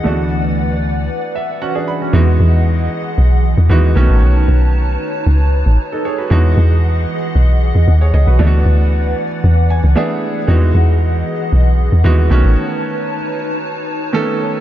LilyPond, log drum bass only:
\new Staff \with { instrumentName = "Log drum bass" } { \clef bass \time 4/4 \key e \major \tempo 4 = 115 r1 | e,8 e,4 r8 b,,8. e,16 dis,8 b,,16 a,,16 | b,,8 b,,4 r8 cis,8. a,,16 r4 | e,8 e,4 r8 b,,8. e,16 dis,8 cis,16 b,,16 |
d,8 d,4 r8 e,8. cis,16 r4 | e,8 e,4 r8 b,,8. e,16 dis,8 b,,16 a,,16 | r1 | }